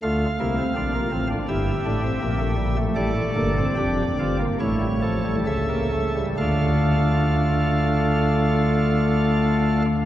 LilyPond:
<<
  \new Staff \with { instrumentName = "Pipe organ" } { \time 4/4 \key d \minor \tempo 4 = 71 << { f''2 e''2 | d''2 cis''4 e''4 | <d' f' f''>1 | } \\ { f'8 e'8 f'4 g'2 | a'4 g'8 f'8 e'8 a'4. | a'1 | } >> }
  \new Staff \with { instrumentName = "Pipe organ" } { \clef bass \time 4/4 \key d \minor << { a8 bes16 c'16 d'16 bes16 c'16 d'16 e'8 d'16 c'16 bes16 a16 g16 a16 | g16 a16 bes16 c'16 d'8 c'16 bes16 a16 g16 f16 g16 a16 bes16 a16 g16 | a1 | } \\ { <d, d>8 <c, c>8 <bes,, bes,>8 <a,, a,>8 <g,, g,>8 <a,, a,>8 <bes,, bes,>4 | <a,, a,>8 <g,, g,>8 <f,, f,>8 <g,, g,>8 <a,, a,>4 <cis, cis>4 | <d, d>1 | } >> }
>>